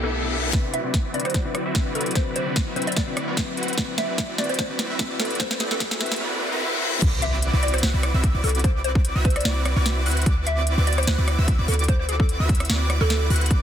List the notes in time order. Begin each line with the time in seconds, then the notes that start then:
Already playing: B1 B2 A3 E4, reverse cymbal
0.02 B2 B3 D4 E4 G4 A4 E5
0.23 B2 B3 D4 E4 A4
0.33 B3 E4 G4 A4 E5
0.52 C3 D3 F#3 C4 D4 E4 F#4 B4 D5, kick, snare, closed hi-hat, riser
0.73 E5, closed hi-hat
0.83 C3 C4 D4 E4 F#4 B4
0.94 kick, snare, closed hi-hat
1.05 C4 E4 F#4 B4 D5
1.13 C3 C4 D4 E4 F#4 B4 D5, closed hi-hat
1.20 closed hi-hat
1.25 C5, cross-stick, closed hi-hat
1.30 closed hi-hat
1.34 C4 B4 C5, kick, snare, closed hi-hat
1.44 C3 C4 D4 E4 F#4 B4 D5
1.55 cross-stick, closed hi-hat
1.66 C4 E4 F#4 B4 E5
1.74 C3 C4 D4 E4 F#4 B4, kick, snare, closed hi-hat
1.86 C4 E4 F#4 B4 D5
1.95 C4 E4 F#4 A4 B4 D5, closed hi-hat
2.01 closed hi-hat
2.06 closed hi-hat
2.11 C3 C4, closed hi-hat
2.15 D4 E4 F#4 B4 C5, kick, snare, closed hi-hat
2.36 C5, closed hi-hat
2.46 C3 C4 D4 E4 F#4 B4
2.56 kick, snare, closed hi-hat
2.67 C4 E4 F#4 B4 E5
2.75 C3 C4 D4 E4 F#4 B4 C5, closed hi-hat
2.82 closed hi-hat
2.87 D5, closed hi-hat
2.92 closed hi-hat
2.96 C4 E4 F#4 B4 D5, kick, snare
3.07 C3 C4 D4 E4 F#4 B4
3.17 cross-stick, closed hi-hat
3.28 C4 E4 F#4 B4 D5
3.36 D3 C4 E4 F#4 B4, kick, snare, closed hi-hat
3.57 C4 E4 F#4 B4 F#5, closed hi-hat
3.63 closed hi-hat
3.68 closed hi-hat
3.73 D3, closed hi-hat
3.77 C4 E4 F#4 B4, kick, snare, closed hi-hat
3.98 E5, snare, closed hi-hat
4.08 D3 C4 E4 F#4 B4
4.18 kick, snare, closed hi-hat
4.29 C4 E4 F#4 B4 D5
4.37 D3 C4 E4 F#4 B4 D5, snare, closed hi-hat
4.44 closed hi-hat
4.49 C5, closed hi-hat
4.54 closed hi-hat
4.59 C4 F#4 C5 F#5, kick, snare, closed hi-hat
4.69 D3 C4 E4 F#4 B4 D5
4.79 snare, closed hi-hat
4.90 C4 E4 F#4 B4 E5
4.98 D3 C4 E4 F#4 B4, kick, snare, closed hi-hat
5.10 C4 E4 F#4 B4 D5
5.19 C4 E4 F#4 A4 B4 D5, snare, closed hi-hat
5.25 closed hi-hat
5.31 closed hi-hat
5.35 D3, closed hi-hat
5.39 C4 E4 F#4 B4 C5, kick, snare, closed hi-hat
5.51 C5, snare
5.60 A4, snare, closed hi-hat
5.70 D3 C4 E4 F#4 A4 B4, snare
5.80 kick, snare, closed hi-hat
5.91 C4 E4 F#4 B4 E5, snare
6.00 D3 C4 E4 F#4 B4, snare, closed hi-hat
6.06 closed hi-hat
6.12 snare, closed hi-hat
6.16 closed hi-hat
6.21 C4 E4 F#4 B4 D5, reverse cymbal
6.52 C4 E4 F#4 B4 E5
6.82 C4 E4 F#4 B4 E5
7.02 C2 D6, kick, closed hi-hat, crash, impact
7.22 E5, closed hi-hat
7.42 closed hi-hat
7.53 C2 C4 E4 F#4 B4 D5 D6
7.63 D5, closed hi-hat
7.68 closed hi-hat
7.74 C5, cross-stick, closed hi-hat
7.78 closed hi-hat
7.83 C2 C4 E4 F#4 B4 C5 F#5 F#6, snare, closed hi-hat
7.94 C2 C4 E4 F#4 B4 D5 D6
8.03 cross-stick, closed hi-hat
8.14 C2 C4 E4 F#4 B4 E5 E6
8.24 kick, closed hi-hat
8.35 C2 C4 E4 F#4 B4 D5 D6
8.44 C2 C4 E4 F#4 A4 B4 D5 D6, open hi-hat
8.49 closed hi-hat
8.55 closed hi-hat
8.59 closed hi-hat
8.64 C5, kick, closed hi-hat
8.84 C5, closed hi-hat
8.95 kick
9.05 closed hi-hat
9.16 C2 C4 E4 F#4 B4 E5 E6
9.25 C5, kick, closed hi-hat
9.30 closed hi-hat
9.36 D5, cross-stick, closed hi-hat
9.41 closed hi-hat
9.45 C2 C4 E4 F#4 B4 D5 D6, snare, closed hi-hat
9.65 cross-stick, closed hi-hat
9.76 C2 C4 E4 F#4 B4 D5 D6
9.86 snare, closed hi-hat
10.06 D2 C4 E4 F#4 B4 F#5 F#6, open hi-hat
10.11 closed hi-hat
10.17 closed hi-hat
10.22 closed hi-hat
10.26 D2 D6, kick, closed hi-hat
10.47 E5, closed hi-hat
10.67 closed hi-hat
10.78 D2 C4 E4 F#4 B4 D5 D6
10.87 D5, closed hi-hat
10.93 closed hi-hat
10.98 C5, cross-stick, closed hi-hat
11.03 closed hi-hat
11.07 D2 C4 E4 F#4 B4 C5 F#5 F#6, snare
11.18 D2 C4 E4 F#4 B4 D5 D6
11.28 cross-stick, closed hi-hat
11.39 D2 C4 E4 F#4 B4 E5 E6
11.48 kick, closed hi-hat
11.59 D2 C4 E4 F#4 B4 D5 D6
11.68 D2 C4 E4 F#4 A4 B4 D5 D6, open hi-hat
11.74 closed hi-hat
11.79 closed hi-hat
11.84 closed hi-hat
11.88 C5, kick, closed hi-hat
11.99 C5
12.09 A4, closed hi-hat
12.20 A4, kick
12.29 closed hi-hat
12.40 D2 C4 E4 F#4 B4 E5 E6
12.49 kick, closed hi-hat
12.55 closed hi-hat
12.60 cross-stick, closed hi-hat
12.65 closed hi-hat
12.70 D2 C4 E4 F#4 B4 D5 D6, snare
12.90 cross-stick, closed hi-hat
13.01 D2 C4 E4 F#4 A4 B4 D5 D6
13.10 snare, closed hi-hat
13.30 D2 C4 E4 F#4 B4 F#5 F#6, open hi-hat
13.36 closed hi-hat
13.41 closed hi-hat
13.46 closed hi-hat
13.51 C2 E4 F#4 D5 D6, kick, closed hi-hat